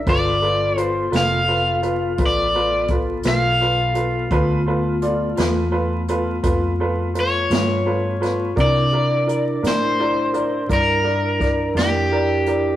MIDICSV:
0, 0, Header, 1, 6, 480
1, 0, Start_track
1, 0, Tempo, 709220
1, 38, Time_signature, 12, 3, 24, 8
1, 8637, End_track
2, 0, Start_track
2, 0, Title_t, "Overdriven electric guitar"
2, 0, Program_c, 0, 29
2, 64, Note_on_c, 0, 74, 87
2, 538, Note_off_c, 0, 74, 0
2, 538, Note_on_c, 0, 72, 87
2, 742, Note_off_c, 0, 72, 0
2, 794, Note_on_c, 0, 77, 77
2, 1515, Note_off_c, 0, 77, 0
2, 1530, Note_on_c, 0, 74, 81
2, 1955, Note_off_c, 0, 74, 0
2, 2222, Note_on_c, 0, 77, 92
2, 3621, Note_off_c, 0, 77, 0
2, 4874, Note_on_c, 0, 73, 66
2, 5823, Note_off_c, 0, 73, 0
2, 5826, Note_on_c, 0, 74, 81
2, 6546, Note_off_c, 0, 74, 0
2, 6549, Note_on_c, 0, 72, 71
2, 7226, Note_off_c, 0, 72, 0
2, 7264, Note_on_c, 0, 70, 78
2, 7968, Note_off_c, 0, 70, 0
2, 7971, Note_on_c, 0, 67, 66
2, 8637, Note_off_c, 0, 67, 0
2, 8637, End_track
3, 0, Start_track
3, 0, Title_t, "Upright piano"
3, 0, Program_c, 1, 0
3, 48, Note_on_c, 1, 71, 71
3, 49, Note_on_c, 1, 65, 62
3, 49, Note_on_c, 1, 69, 58
3, 223, Note_off_c, 1, 65, 0
3, 223, Note_off_c, 1, 69, 0
3, 223, Note_off_c, 1, 71, 0
3, 279, Note_on_c, 1, 65, 46
3, 282, Note_on_c, 1, 69, 46
3, 286, Note_on_c, 1, 71, 52
3, 458, Note_off_c, 1, 65, 0
3, 459, Note_off_c, 1, 69, 0
3, 461, Note_off_c, 1, 71, 0
3, 515, Note_on_c, 1, 65, 43
3, 521, Note_on_c, 1, 69, 37
3, 524, Note_on_c, 1, 71, 48
3, 696, Note_off_c, 1, 65, 0
3, 699, Note_off_c, 1, 69, 0
3, 700, Note_off_c, 1, 71, 0
3, 752, Note_on_c, 1, 65, 51
3, 757, Note_on_c, 1, 69, 48
3, 759, Note_on_c, 1, 71, 57
3, 934, Note_off_c, 1, 65, 0
3, 936, Note_off_c, 1, 69, 0
3, 937, Note_off_c, 1, 71, 0
3, 999, Note_on_c, 1, 65, 49
3, 1004, Note_on_c, 1, 69, 48
3, 1006, Note_on_c, 1, 71, 54
3, 1177, Note_off_c, 1, 65, 0
3, 1180, Note_off_c, 1, 69, 0
3, 1181, Note_off_c, 1, 71, 0
3, 1233, Note_on_c, 1, 65, 54
3, 1235, Note_on_c, 1, 69, 45
3, 1238, Note_on_c, 1, 71, 54
3, 1414, Note_off_c, 1, 65, 0
3, 1415, Note_off_c, 1, 69, 0
3, 1417, Note_off_c, 1, 71, 0
3, 1472, Note_on_c, 1, 65, 47
3, 1480, Note_on_c, 1, 69, 43
3, 1483, Note_on_c, 1, 71, 55
3, 1654, Note_off_c, 1, 65, 0
3, 1658, Note_off_c, 1, 69, 0
3, 1659, Note_off_c, 1, 71, 0
3, 1722, Note_on_c, 1, 69, 41
3, 1723, Note_on_c, 1, 65, 53
3, 1730, Note_on_c, 1, 71, 57
3, 1899, Note_off_c, 1, 65, 0
3, 1899, Note_off_c, 1, 69, 0
3, 1902, Note_off_c, 1, 71, 0
3, 1962, Note_on_c, 1, 69, 36
3, 1963, Note_on_c, 1, 65, 43
3, 1967, Note_on_c, 1, 71, 51
3, 2138, Note_off_c, 1, 69, 0
3, 2139, Note_off_c, 1, 65, 0
3, 2141, Note_off_c, 1, 71, 0
3, 2196, Note_on_c, 1, 65, 44
3, 2200, Note_on_c, 1, 69, 41
3, 2201, Note_on_c, 1, 71, 48
3, 2375, Note_off_c, 1, 65, 0
3, 2378, Note_off_c, 1, 69, 0
3, 2378, Note_off_c, 1, 71, 0
3, 2441, Note_on_c, 1, 65, 50
3, 2447, Note_on_c, 1, 69, 47
3, 2452, Note_on_c, 1, 71, 57
3, 2618, Note_off_c, 1, 65, 0
3, 2621, Note_off_c, 1, 69, 0
3, 2623, Note_off_c, 1, 71, 0
3, 2667, Note_on_c, 1, 65, 47
3, 2672, Note_on_c, 1, 69, 40
3, 2677, Note_on_c, 1, 71, 51
3, 2851, Note_off_c, 1, 65, 0
3, 2853, Note_off_c, 1, 69, 0
3, 2856, Note_off_c, 1, 71, 0
3, 2917, Note_on_c, 1, 65, 74
3, 2918, Note_on_c, 1, 69, 67
3, 2923, Note_on_c, 1, 71, 86
3, 3096, Note_off_c, 1, 65, 0
3, 3096, Note_off_c, 1, 69, 0
3, 3099, Note_off_c, 1, 71, 0
3, 3156, Note_on_c, 1, 65, 62
3, 3165, Note_on_c, 1, 69, 52
3, 3165, Note_on_c, 1, 71, 63
3, 3335, Note_off_c, 1, 65, 0
3, 3340, Note_off_c, 1, 69, 0
3, 3340, Note_off_c, 1, 71, 0
3, 3397, Note_on_c, 1, 65, 55
3, 3399, Note_on_c, 1, 69, 52
3, 3402, Note_on_c, 1, 74, 61
3, 3576, Note_off_c, 1, 65, 0
3, 3577, Note_off_c, 1, 69, 0
3, 3578, Note_off_c, 1, 74, 0
3, 3632, Note_on_c, 1, 65, 58
3, 3637, Note_on_c, 1, 69, 50
3, 3641, Note_on_c, 1, 71, 68
3, 3813, Note_off_c, 1, 65, 0
3, 3816, Note_off_c, 1, 69, 0
3, 3818, Note_off_c, 1, 71, 0
3, 3867, Note_on_c, 1, 65, 57
3, 3870, Note_on_c, 1, 69, 51
3, 3871, Note_on_c, 1, 71, 67
3, 4051, Note_off_c, 1, 65, 0
3, 4052, Note_off_c, 1, 69, 0
3, 4053, Note_off_c, 1, 71, 0
3, 4119, Note_on_c, 1, 65, 61
3, 4120, Note_on_c, 1, 69, 55
3, 4125, Note_on_c, 1, 71, 68
3, 4297, Note_off_c, 1, 65, 0
3, 4297, Note_off_c, 1, 69, 0
3, 4300, Note_off_c, 1, 71, 0
3, 4352, Note_on_c, 1, 65, 62
3, 4355, Note_on_c, 1, 71, 65
3, 4356, Note_on_c, 1, 69, 52
3, 4533, Note_off_c, 1, 65, 0
3, 4535, Note_off_c, 1, 71, 0
3, 4536, Note_off_c, 1, 69, 0
3, 4602, Note_on_c, 1, 65, 58
3, 4602, Note_on_c, 1, 69, 53
3, 4608, Note_on_c, 1, 71, 65
3, 4778, Note_off_c, 1, 65, 0
3, 4778, Note_off_c, 1, 69, 0
3, 4782, Note_off_c, 1, 71, 0
3, 4832, Note_on_c, 1, 65, 41
3, 4835, Note_on_c, 1, 69, 42
3, 4840, Note_on_c, 1, 71, 49
3, 5014, Note_off_c, 1, 65, 0
3, 5015, Note_off_c, 1, 69, 0
3, 5018, Note_off_c, 1, 71, 0
3, 5077, Note_on_c, 1, 65, 45
3, 5083, Note_on_c, 1, 69, 39
3, 5086, Note_on_c, 1, 71, 46
3, 5256, Note_off_c, 1, 65, 0
3, 5259, Note_off_c, 1, 69, 0
3, 5261, Note_off_c, 1, 71, 0
3, 5316, Note_on_c, 1, 65, 53
3, 5323, Note_on_c, 1, 69, 44
3, 5323, Note_on_c, 1, 71, 60
3, 5496, Note_off_c, 1, 65, 0
3, 5499, Note_off_c, 1, 69, 0
3, 5499, Note_off_c, 1, 71, 0
3, 5553, Note_on_c, 1, 65, 55
3, 5557, Note_on_c, 1, 69, 49
3, 5562, Note_on_c, 1, 71, 66
3, 5735, Note_off_c, 1, 65, 0
3, 5736, Note_off_c, 1, 69, 0
3, 5739, Note_off_c, 1, 71, 0
3, 5793, Note_on_c, 1, 70, 53
3, 5794, Note_on_c, 1, 64, 56
3, 5798, Note_on_c, 1, 74, 69
3, 5975, Note_off_c, 1, 64, 0
3, 5975, Note_off_c, 1, 70, 0
3, 5977, Note_off_c, 1, 74, 0
3, 6043, Note_on_c, 1, 64, 50
3, 6044, Note_on_c, 1, 70, 48
3, 6046, Note_on_c, 1, 74, 51
3, 6219, Note_off_c, 1, 64, 0
3, 6220, Note_off_c, 1, 70, 0
3, 6221, Note_off_c, 1, 74, 0
3, 6273, Note_on_c, 1, 64, 39
3, 6274, Note_on_c, 1, 70, 41
3, 6280, Note_on_c, 1, 74, 53
3, 6455, Note_off_c, 1, 64, 0
3, 6455, Note_off_c, 1, 70, 0
3, 6458, Note_off_c, 1, 74, 0
3, 6516, Note_on_c, 1, 64, 51
3, 6516, Note_on_c, 1, 70, 43
3, 6522, Note_on_c, 1, 74, 54
3, 6696, Note_off_c, 1, 64, 0
3, 6696, Note_off_c, 1, 70, 0
3, 6699, Note_off_c, 1, 74, 0
3, 6764, Note_on_c, 1, 64, 53
3, 6765, Note_on_c, 1, 74, 55
3, 6767, Note_on_c, 1, 70, 47
3, 6940, Note_off_c, 1, 64, 0
3, 6941, Note_off_c, 1, 74, 0
3, 6942, Note_off_c, 1, 70, 0
3, 6995, Note_on_c, 1, 64, 54
3, 6995, Note_on_c, 1, 70, 42
3, 6997, Note_on_c, 1, 74, 58
3, 7176, Note_off_c, 1, 64, 0
3, 7176, Note_off_c, 1, 70, 0
3, 7177, Note_off_c, 1, 74, 0
3, 7231, Note_on_c, 1, 64, 49
3, 7235, Note_on_c, 1, 70, 43
3, 7239, Note_on_c, 1, 74, 52
3, 7414, Note_off_c, 1, 64, 0
3, 7416, Note_off_c, 1, 70, 0
3, 7418, Note_off_c, 1, 74, 0
3, 7464, Note_on_c, 1, 64, 50
3, 7470, Note_on_c, 1, 70, 45
3, 7473, Note_on_c, 1, 74, 52
3, 7650, Note_off_c, 1, 64, 0
3, 7654, Note_off_c, 1, 70, 0
3, 7655, Note_off_c, 1, 74, 0
3, 7712, Note_on_c, 1, 64, 40
3, 7715, Note_on_c, 1, 70, 37
3, 7719, Note_on_c, 1, 74, 53
3, 7895, Note_off_c, 1, 64, 0
3, 7896, Note_off_c, 1, 70, 0
3, 7898, Note_off_c, 1, 74, 0
3, 7951, Note_on_c, 1, 64, 44
3, 7953, Note_on_c, 1, 70, 39
3, 7959, Note_on_c, 1, 74, 44
3, 8134, Note_off_c, 1, 64, 0
3, 8135, Note_off_c, 1, 70, 0
3, 8138, Note_off_c, 1, 74, 0
3, 8197, Note_on_c, 1, 64, 52
3, 8202, Note_on_c, 1, 70, 54
3, 8207, Note_on_c, 1, 74, 61
3, 8377, Note_off_c, 1, 64, 0
3, 8380, Note_off_c, 1, 70, 0
3, 8382, Note_off_c, 1, 74, 0
3, 8435, Note_on_c, 1, 64, 47
3, 8438, Note_on_c, 1, 70, 43
3, 8444, Note_on_c, 1, 74, 51
3, 8616, Note_off_c, 1, 64, 0
3, 8618, Note_off_c, 1, 70, 0
3, 8621, Note_off_c, 1, 74, 0
3, 8637, End_track
4, 0, Start_track
4, 0, Title_t, "Tonewheel organ"
4, 0, Program_c, 2, 16
4, 57, Note_on_c, 2, 69, 59
4, 58, Note_on_c, 2, 65, 62
4, 59, Note_on_c, 2, 59, 58
4, 2897, Note_off_c, 2, 69, 0
4, 2898, Note_off_c, 2, 59, 0
4, 2898, Note_off_c, 2, 65, 0
4, 2928, Note_on_c, 2, 57, 51
4, 2935, Note_on_c, 2, 65, 58
4, 2937, Note_on_c, 2, 59, 57
4, 5775, Note_off_c, 2, 57, 0
4, 5779, Note_off_c, 2, 65, 0
4, 5780, Note_off_c, 2, 59, 0
4, 5804, Note_on_c, 2, 70, 51
4, 5805, Note_on_c, 2, 62, 60
4, 5808, Note_on_c, 2, 64, 53
4, 8637, Note_off_c, 2, 62, 0
4, 8637, Note_off_c, 2, 64, 0
4, 8637, Note_off_c, 2, 70, 0
4, 8637, End_track
5, 0, Start_track
5, 0, Title_t, "Fingered electric bass"
5, 0, Program_c, 3, 33
5, 42, Note_on_c, 3, 31, 73
5, 737, Note_off_c, 3, 31, 0
5, 762, Note_on_c, 3, 29, 83
5, 1457, Note_off_c, 3, 29, 0
5, 1482, Note_on_c, 3, 33, 83
5, 2176, Note_off_c, 3, 33, 0
5, 2198, Note_on_c, 3, 35, 77
5, 2895, Note_off_c, 3, 35, 0
5, 2913, Note_on_c, 3, 38, 69
5, 3612, Note_off_c, 3, 38, 0
5, 3643, Note_on_c, 3, 40, 79
5, 4337, Note_off_c, 3, 40, 0
5, 4358, Note_on_c, 3, 41, 82
5, 5055, Note_off_c, 3, 41, 0
5, 5077, Note_on_c, 3, 43, 85
5, 5775, Note_off_c, 3, 43, 0
5, 5802, Note_on_c, 3, 48, 67
5, 6498, Note_off_c, 3, 48, 0
5, 6520, Note_on_c, 3, 45, 82
5, 7217, Note_off_c, 3, 45, 0
5, 7239, Note_on_c, 3, 43, 74
5, 7937, Note_off_c, 3, 43, 0
5, 7951, Note_on_c, 3, 41, 85
5, 8637, Note_off_c, 3, 41, 0
5, 8637, End_track
6, 0, Start_track
6, 0, Title_t, "Drums"
6, 44, Note_on_c, 9, 42, 76
6, 46, Note_on_c, 9, 36, 96
6, 112, Note_off_c, 9, 42, 0
6, 113, Note_off_c, 9, 36, 0
6, 525, Note_on_c, 9, 42, 62
6, 593, Note_off_c, 9, 42, 0
6, 763, Note_on_c, 9, 42, 67
6, 778, Note_on_c, 9, 38, 87
6, 830, Note_off_c, 9, 42, 0
6, 846, Note_off_c, 9, 38, 0
6, 1238, Note_on_c, 9, 42, 47
6, 1306, Note_off_c, 9, 42, 0
6, 1474, Note_on_c, 9, 42, 71
6, 1478, Note_on_c, 9, 36, 80
6, 1542, Note_off_c, 9, 42, 0
6, 1546, Note_off_c, 9, 36, 0
6, 1950, Note_on_c, 9, 42, 50
6, 1955, Note_on_c, 9, 36, 70
6, 2018, Note_off_c, 9, 42, 0
6, 2023, Note_off_c, 9, 36, 0
6, 2187, Note_on_c, 9, 42, 74
6, 2203, Note_on_c, 9, 38, 84
6, 2255, Note_off_c, 9, 42, 0
6, 2270, Note_off_c, 9, 38, 0
6, 2673, Note_on_c, 9, 42, 55
6, 2740, Note_off_c, 9, 42, 0
6, 2915, Note_on_c, 9, 42, 59
6, 2916, Note_on_c, 9, 36, 87
6, 2983, Note_off_c, 9, 36, 0
6, 2983, Note_off_c, 9, 42, 0
6, 3397, Note_on_c, 9, 42, 59
6, 3464, Note_off_c, 9, 42, 0
6, 3635, Note_on_c, 9, 42, 68
6, 3650, Note_on_c, 9, 38, 101
6, 3703, Note_off_c, 9, 42, 0
6, 3718, Note_off_c, 9, 38, 0
6, 4115, Note_on_c, 9, 42, 58
6, 4183, Note_off_c, 9, 42, 0
6, 4354, Note_on_c, 9, 42, 82
6, 4356, Note_on_c, 9, 36, 77
6, 4422, Note_off_c, 9, 42, 0
6, 4424, Note_off_c, 9, 36, 0
6, 4839, Note_on_c, 9, 42, 58
6, 4906, Note_off_c, 9, 42, 0
6, 5078, Note_on_c, 9, 42, 76
6, 5094, Note_on_c, 9, 38, 101
6, 5146, Note_off_c, 9, 42, 0
6, 5162, Note_off_c, 9, 38, 0
6, 5566, Note_on_c, 9, 42, 55
6, 5582, Note_on_c, 9, 38, 32
6, 5634, Note_off_c, 9, 42, 0
6, 5650, Note_off_c, 9, 38, 0
6, 5801, Note_on_c, 9, 36, 88
6, 5804, Note_on_c, 9, 42, 65
6, 5869, Note_off_c, 9, 36, 0
6, 5872, Note_off_c, 9, 42, 0
6, 6286, Note_on_c, 9, 42, 54
6, 6353, Note_off_c, 9, 42, 0
6, 6525, Note_on_c, 9, 42, 71
6, 6541, Note_on_c, 9, 38, 92
6, 6593, Note_off_c, 9, 42, 0
6, 6609, Note_off_c, 9, 38, 0
6, 6998, Note_on_c, 9, 42, 49
6, 7065, Note_off_c, 9, 42, 0
6, 7239, Note_on_c, 9, 36, 74
6, 7242, Note_on_c, 9, 42, 74
6, 7307, Note_off_c, 9, 36, 0
6, 7310, Note_off_c, 9, 42, 0
6, 7718, Note_on_c, 9, 36, 62
6, 7720, Note_on_c, 9, 42, 53
6, 7735, Note_on_c, 9, 38, 29
6, 7785, Note_off_c, 9, 36, 0
6, 7788, Note_off_c, 9, 42, 0
6, 7803, Note_off_c, 9, 38, 0
6, 7962, Note_on_c, 9, 42, 67
6, 7977, Note_on_c, 9, 38, 97
6, 8029, Note_off_c, 9, 42, 0
6, 8045, Note_off_c, 9, 38, 0
6, 8434, Note_on_c, 9, 42, 60
6, 8501, Note_off_c, 9, 42, 0
6, 8637, End_track
0, 0, End_of_file